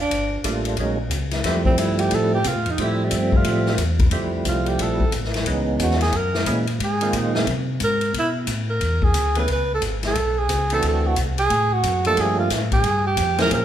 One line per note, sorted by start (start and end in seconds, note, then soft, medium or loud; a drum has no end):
0.01 0.43 D4 medium
0.11 0.29 G1 medium
0.11 kick soft
0.11 ride medium
0.31 0.37 G1 soft
0.43 0.77 A1 medium
0.43 0.77 G3 medium
0.43 0.77 A3 medium
0.43 0.77 A#3 medium
0.43 0.78 D4 medium
0.43 0.77 F4 medium
0.43 kick soft
0.43 hi-hat pedal soft
0.43 ride medium
0.65 ride soft
0.77 1.10 A#1 medium
0.77 0.98 F#3 medium
0.77 0.98 G#3 medium
0.77 0.98 A#3 medium
0.77 0.98 C#4 medium
0.77 0.99 D#4 medium
0.77 kick soft
0.77 ride medium
1.10 1.43 C#2 medium
1.10 kick soft
1.10 hi-hat pedal soft
1.10 ride medium
1.31 snare soft
1.31 ride soft
1.44 1.77 F2 medium
1.44 2.38 F3 medium
1.44 2.38 G3 medium
1.44 2.38 A3 medium
1.44 2.39 C4 medium
1.44 2.39 E4 medium
1.44 kick soft
1.44 snare soft
1.44 ride medium
1.65 1.81 C4 loud
1.65 kick medium
1.77 2.11 G2 medium
1.77 2.02 E4 loud
1.77 kick soft
1.77 hi-hat pedal soft
1.77 ride medium
1.99 2.16 G4 medium
1.99 ride medium
2.11 2.44 A2 medium
2.11 2.34 A4 loud
2.11 kick soft
2.11 ride medium
2.35 2.50 G4 medium
2.44 2.56 C3 loud
2.44 2.72 F4 medium
2.44 kick soft
2.44 hi-hat pedal medium
2.44 ride medium
2.55 2.67 A2 medium
2.66 2.77 F2 medium
2.66 ride soft
2.71 2.85 D#4 medium
2.78 3.11 A2 medium
2.78 3.72 F3 medium
2.78 3.73 G3 medium
2.78 3.73 A3 medium
2.78 3.73 C4 medium
2.78 3.73 E5 medium
2.78 kick soft
2.78 ride medium
2.83 3.06 E4 medium
3.05 3.19 G3 medium
3.11 3.44 G2 medium
3.11 kick soft
3.11 hi-hat pedal soft
3.11 ride medium
3.17 3.38 C4 medium
3.32 kick medium
3.37 3.81 F4 loud
3.44 3.78 A2 medium
3.44 kick soft
3.44 ride medium
3.66 snare soft
3.78 4.11 E2 medium
3.78 kick soft
3.78 hi-hat pedal medium
3.78 ride medium
3.99 kick medium
3.99 ride soft
4.11 4.44 F2 medium
4.11 5.05 F3 medium
4.11 5.06 G3 medium
4.11 5.06 A3 medium
4.11 5.05 C4 soft
4.11 5.06 E4 medium
4.11 kick soft
4.11 ride medium
4.45 4.78 C2 medium
4.45 4.70 F4 medium
4.45 kick soft
4.45 hi-hat pedal medium
4.45 ride medium
4.66 4.84 G4 medium
4.66 ride soft
4.78 5.11 A#1 medium
4.78 5.14 A4 medium
4.78 kick soft
4.78 ride medium
5.00 kick soft
5.12 5.45 A1 medium
5.12 kick soft
5.12 hi-hat pedal soft
5.12 ride medium
5.24 snare soft
5.34 snare soft
5.34 ride soft
5.46 5.79 C#2 medium
5.46 5.97 E3 medium
5.46 5.97 G#3 medium
5.46 5.97 B3 medium
5.46 5.97 C#4 medium
5.46 5.97 D#4 medium
5.46 kick soft
5.46 ride medium
5.79 6.12 E2 medium
5.79 6.01 F#4 medium
5.79 kick soft
5.79 hi-hat pedal medium
5.79 ride medium
5.91 snare soft
6.01 6.18 G#4 medium
6.01 snare soft
6.01 ride soft
6.13 6.46 F#2 medium
6.13 kick soft
6.13 ride soft
6.17 6.49 A#4 medium
6.34 snare medium
6.46 6.79 A#2 medium
6.46 6.66 E3 medium
6.46 6.66 G#3 medium
6.46 6.66 A#3 medium
6.46 6.66 C#4 medium
6.46 6.66 E4 medium
6.46 kick soft
6.46 hi-hat pedal soft
6.46 ride medium
6.67 ride soft
6.80 7.13 G#2 medium
6.80 kick soft
6.80 ride medium
6.84 7.19 G#4 medium
7.01 7.33 D#3 medium
7.01 7.33 G#3 medium
7.01 7.34 A#3 medium
7.01 7.33 C4 medium
7.01 7.34 F4 medium
7.01 ride soft
7.13 7.46 A#2 medium
7.13 kick soft
7.13 hi-hat pedal soft
7.13 ride medium
7.17 7.37 D#4 medium
7.35 7.46 D#3 medium
7.35 7.46 G#3 medium
7.35 7.46 A#3 medium
7.35 7.47 C4 medium
7.35 7.46 G#4 medium
7.35 snare medium
7.47 7.80 C3 medium
7.47 kick soft
7.47 ride medium
7.80 8.13 G#2 medium
7.80 kick soft
7.80 hi-hat pedal medium
7.80 ride medium
7.84 8.14 A#4 loud
8.01 ride soft
8.14 8.47 B2 medium
8.14 kick soft
8.14 ride medium
8.19 8.30 E4 medium
8.47 8.80 A2 medium
8.47 kick soft
8.47 hi-hat pedal medium
8.47 ride medium
8.70 9.05 A#4 medium
8.81 9.14 E2 medium
8.81 kick soft
8.81 ride medium
9.02 9.37 G#4 loud
9.02 kick medium
9.14 9.47 D2 medium
9.14 kick soft
9.14 hi-hat pedal soft
9.14 ride medium
9.35 9.48 E3 medium
9.35 9.48 A3 medium
9.35 9.48 B3 medium
9.35 9.48 C#4 medium
9.35 9.48 G#4 medium
9.35 9.49 B4 medium
9.35 ride soft
9.48 9.81 C#2 medium
9.48 kick soft
9.48 ride medium
9.52 9.70 B4 medium
9.74 9.84 A4 medium
9.81 10.14 G#1 medium
9.81 kick soft
9.81 hi-hat pedal soft
9.81 ride medium
10.03 snare soft
10.03 ride soft
10.07 10.40 A4 medium
10.15 10.48 B1 medium
10.15 kick soft
10.15 ride medium
10.39 10.72 G#4 medium
10.49 10.82 C#2 medium
10.49 kick soft
10.49 hi-hat pedal medium
10.49 ride medium
10.70 11.15 E3 medium
10.70 11.15 A3 medium
10.70 11.15 C4 medium
10.70 11.15 D4 medium
10.70 11.16 F#4 medium
10.70 ride medium
10.74 10.84 A4 loud
10.82 11.16 D2 medium
10.82 kick soft
10.82 ride medium
10.88 11.08 A4 medium
11.07 11.18 F#4 loud
11.16 11.49 C2 medium
11.16 kick soft
11.16 hi-hat pedal soft
11.16 ride medium
11.38 11.75 G#4 loud
11.38 ride soft
11.50 11.83 A2 medium
11.50 kick soft
11.50 ride medium
11.73 12.06 F#4 medium
11.83 12.16 F#2 medium
11.83 kick soft
11.83 hi-hat pedal soft
11.83 ride medium
12.05 12.49 F3 medium
12.05 12.49 A3 medium
12.05 12.49 A#3 medium
12.05 12.49 D4 medium
12.05 12.50 G4 medium
12.05 12.22 A4 loud
12.05 ride soft
12.16 12.50 G2 medium
12.16 kick soft
12.16 ride medium
12.21 12.39 G#4 medium
12.39 12.51 F4 medium
12.50 12.83 A2 medium
12.50 kick soft
12.50 snare soft
12.50 hi-hat pedal soft
12.50 ride medium
12.72 13.04 G#4 loud
12.72 kick medium
12.72 ride soft
12.83 13.17 G2 medium
12.83 kick soft
12.83 ride medium
13.07 13.38 G4 medium
13.17 13.50 F2 medium
13.17 kick soft
13.17 hi-hat pedal soft
13.17 ride medium
13.38 13.65 F3 medium
13.38 13.65 A#3 medium
13.38 13.65 C4 medium
13.38 13.65 C#4 medium
13.38 13.65 G#4 medium
13.38 13.52 A#4 loud
13.38 snare medium
13.38 ride soft
13.51 13.65 A#2 medium
13.51 13.65 A#4 medium
13.51 kick soft
13.51 ride medium